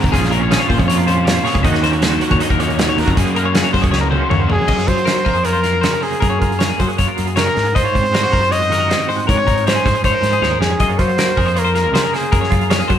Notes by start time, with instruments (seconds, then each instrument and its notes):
Already playing: overdriven electric guitar G#2 D#3 F#3 C4 F#4, clean electric guitar G#2 G#3 C4 D#4 F#4 A#4
0.04 fingered electric bass C2, kick, closed hi-hat
0.12 fingered electric bass A#1, overdriven electric guitar A#2 F3 A#3 C#4 F4, clean electric guitar A#2 C#4 F4 G#4, kick, closed hi-hat
0.24 snare, closed hi-hat
0.31 overdriven electric guitar A#3 C#4 F4, clean electric guitar C#4 A#4, closed hi-hat
0.41 clean electric guitar C#5
0.50 overdriven electric guitar F3 A#3 C#4 F4, clean electric guitar F3 F4 G#4, snare, closed hi-hat
0.59 clean electric guitar C#5, closed hi-hat
0.69 fingered electric bass A#2, clean electric guitar G#4 C5, kick, open hi-hat
0.78 fingered electric bass F2, clean electric guitar C#5, kick, closed hi-hat
0.88 clean electric guitar F4 C#5, closed hi-hat
0.98 clean electric guitar A#4, closed hi-hat
1.07 clean electric guitar A#2 C#4 C5, overdriven electric guitar A#3 C#4 F4, closed hi-hat
1.25 overdriven electric guitar A#2 F3 A#3 C#4 F4, clean electric guitar C#5, snare, closed hi-hat
1.29 clean electric guitar F4
1.35 clean electric guitar C5, closed hi-hat
1.45 overdriven electric guitar C#4 F4, clean electric guitar G#4 C#5, snare, open hi-hat
1.49 overdriven electric guitar A#3
1.55 fingered electric bass C#2, kick, closed hi-hat
1.63 fingered electric bass D#2, clean electric guitar D#3 C#4 D#4 F#4 D#5, overdriven electric guitar D#3 A#3, kick, closed hi-hat
1.67 overdriven electric guitar D#4 F#4
1.74 snare, closed hi-hat
1.83 overdriven electric guitar A#3 D#4 F#4, clean electric guitar C#4 C5, snare, closed hi-hat
1.92 clean electric guitar C#5, closed hi-hat
2.02 overdriven electric guitar D#3 A#3 D#4 F#4, clean electric guitar F#3 C#4 C5, snare, closed hi-hat
2.11 clean electric guitar D#4, closed hi-hat
2.21 clean electric guitar F#4 A#4, closed hi-hat
2.30 fingered electric bass D#2, clean electric guitar C#5, kick, closed hi-hat
2.40 clean electric guitar D#4 D#5, closed hi-hat
2.50 fingered electric bass D#2, clean electric guitar A#4, kick
2.59 clean electric guitar A#2 C#4 C#5, overdriven electric guitar D#4 F#4, closed hi-hat
2.63 overdriven electric guitar A#3
2.70 closed hi-hat
2.78 overdriven electric guitar D#3 A#3 D#4 F#4, clean electric guitar D#4 A#4, snare, closed hi-hat
2.88 clean electric guitar C#5, closed hi-hat
2.98 fingered electric bass D#2, overdriven electric guitar A#3 D#4 F#4, clean electric guitar F#4 A#4, open hi-hat
3.08 fingered electric bass F2, kick, closed hi-hat
3.15 fingered electric bass F#2, overdriven electric guitar F#3 A#3 C#4 F#4, clean electric guitar A#3 G#4, kick, closed hi-hat
3.20 clean electric guitar G#4
3.27 closed hi-hat
3.34 overdriven electric guitar A#3 C#4 F#4, clean electric guitar A#4, closed hi-hat
3.40 clean electric guitar A#3
3.45 clean electric guitar C#5
3.53 overdriven electric guitar F#3 A#3 C#4 F#4, clean electric guitar F#3 G#4, snare, closed hi-hat
3.64 clean electric guitar C#5, closed hi-hat
3.73 fingered electric bass F#3, clean electric guitar C5, kick, open hi-hat
3.78 clean electric guitar G#4
3.82 fingered electric bass C#2, clean electric guitar C#5, kick, closed hi-hat
3.91 clean electric guitar C#5, snare
4.01 clean electric guitar A#4
4.11 overdriven electric guitar A#3 C#4 F#4, clean electric guitar C5, high tom
4.15 clean electric guitar C#3 A#3
4.30 fingered electric bass D#2, overdriven electric guitar F#3 A#3 C#4 F#4, clean electric guitar C#5, mid tom
4.40 clean electric guitar C5
4.49 fingered electric bass F2, overdriven electric guitar C#4 F#4, trumpet G#4, clean electric guitar C#5, floor tom
4.53 overdriven electric guitar A#3, clean electric guitar G#4
4.68 fingered electric bass F#2, clean electric guitar F#2 D#5, kick, crash
4.77 clean electric guitar C#5, snare, closed hi-hat
4.88 fingered electric bass F#3, clean electric guitar F4, trumpet C5, kick, closed hi-hat
4.98 closed hi-hat
5.05 clean electric guitar A#4, snare, closed hi-hat
5.11 clean electric guitar A#3
5.15 clean electric guitar F#4, closed hi-hat
5.25 fingered electric bass F2, clean electric guitar G#4 A#4, kick, open hi-hat
5.34 clean electric guitar C5, closed hi-hat
5.43 clean electric guitar F4 C#5, trumpet A#4, closed hi-hat
5.53 clean electric guitar C5
5.63 clean electric guitar A#4, snare, closed hi-hat
5.73 clean electric guitar A#4
5.81 clean electric guitar C#3 F#4 C5, snare, closed hi-hat
5.92 clean electric guitar G#4 A#4, closed hi-hat
6.01 clean electric guitar A#3 C5, trumpet G#4, open hi-hat
6.13 closed hi-hat
6.20 fingered electric bass F#2, clean electric guitar F#2 A#4, kick, closed hi-hat
6.30 clean electric guitar C#5
6.39 fingered electric bass F#2, clean electric guitar F4 A#4, kick, closed hi-hat
6.52 closed hi-hat
6.59 clean electric guitar A#3 C#5, snare, closed hi-hat
6.69 clean electric guitar G#4, closed hi-hat
6.80 fingered electric bass F#3, clean electric guitar F#3 G#4 C5, kick, closed hi-hat
6.88 clean electric guitar G#4, closed hi-hat
6.98 fingered electric bass F#2, clean electric guitar F4 C#5, kick, closed hi-hat
7.08 clean electric guitar A#4
7.18 fingered electric bass F#2, closed hi-hat
7.27 clean electric guitar G#4, closed hi-hat
7.36 clean electric guitar C#3 G#4 C#5, trumpet A#4, snare, closed hi-hat
7.46 clean electric guitar A#4, closed hi-hat
7.57 fingered electric bass G#2, clean electric guitar G#2, snare, open hi-hat
7.66 closed hi-hat
7.75 clean electric guitar F4 D#5, trumpet C5, kick, closed hi-hat
7.84 clean electric guitar C#5, closed hi-hat
7.95 fingered electric bass G#2, clean electric guitar C4, kick, closed hi-hat
8.06 closed hi-hat
8.13 clean electric guitar G#3 F#4 A#4, snare, closed hi-hat
8.23 clean electric guitar F#4, closed hi-hat
8.33 fingered electric bass F#2, clean electric guitar F4 A#4, kick, open hi-hat
8.43 clean electric guitar C5, closed hi-hat
8.52 clean electric guitar C#5, trumpet D#5, closed hi-hat
8.62 clean electric guitar C5, closed hi-hat
8.70 clean electric guitar D#3 F#4 A#4, snare, closed hi-hat
8.80 clean electric guitar A#4
8.89 clean electric guitar C4 C5, snare, closed hi-hat
8.98 clean electric guitar A#4, closed hi-hat
9.09 clean electric guitar G#2 C5, open hi-hat
9.20 closed hi-hat
9.27 clean electric guitar G#2 A#4, fingered electric bass G#2, trumpet C#5, kick, closed hi-hat
9.38 clean electric guitar C#5
9.47 fingered electric bass G#2, clean electric guitar D#4 A#4, kick, closed hi-hat
9.58 closed hi-hat
9.67 clean electric guitar C#4 C#5, trumpet C5, snare, closed hi-hat
9.76 clean electric guitar G#4, closed hi-hat
9.86 fingered electric bass G#2, clean electric guitar F3 G#4 C5, kick, snare, closed hi-hat
9.95 clean electric guitar G#4, closed hi-hat
10.04 fingered electric bass G#2, clean electric guitar D#4 C#5, trumpet C5, kick, closed hi-hat
10.14 clean electric guitar A#4
10.22 fingered electric bass G#2, snare, closed hi-hat
10.33 clean electric guitar G#4, closed hi-hat
10.41 fingered electric bass D#2, clean electric guitar G#2 G#4 C#5, snare
10.51 clean electric guitar A#4
10.60 fingered electric bass F2, clean electric guitar C#4, trumpet G#4, snare
10.80 fingered electric bass F#2, clean electric guitar F#3 A#3 F4 D#5, kick, closed hi-hat
10.90 clean electric guitar C#5, closed hi-hat
10.99 fingered electric bass F#3, clean electric guitar F4, trumpet C5, kick, closed hi-hat
11.09 closed hi-hat
11.18 clean electric guitar A#3 A#4, snare, closed hi-hat
11.28 clean electric guitar F#4, closed hi-hat
11.37 fingered electric bass F2, clean electric guitar G#4 A#4, kick, open hi-hat
11.46 clean electric guitar C5, closed hi-hat
11.56 clean electric guitar F4 C#5, trumpet A#4, closed hi-hat
11.65 clean electric guitar C5, closed hi-hat
11.75 clean electric guitar A#4, snare, closed hi-hat
11.84 clean electric guitar A#4
11.92 clean electric guitar C#3 G#4 C5, snare, closed hi-hat
12.04 clean electric guitar A#4, closed hi-hat
12.14 clean electric guitar A#3 C5, trumpet G#4, snare, open hi-hat
12.23 closed hi-hat
12.32 clean electric guitar F#2 A#4, fingered electric bass F#2, kick, closed hi-hat
12.41 clean electric guitar C#5, snare
12.50 fingered electric bass F#2, clean electric guitar F4 A#4, kick, closed hi-hat
12.61 closed hi-hat
12.70 clean electric guitar A#3 C#5, snare, closed hi-hat
12.80 clean electric guitar G#4, closed hi-hat
12.88 clean electric guitar F#3 G#4 C5, fingered electric bass F#3, kick, closed hi-hat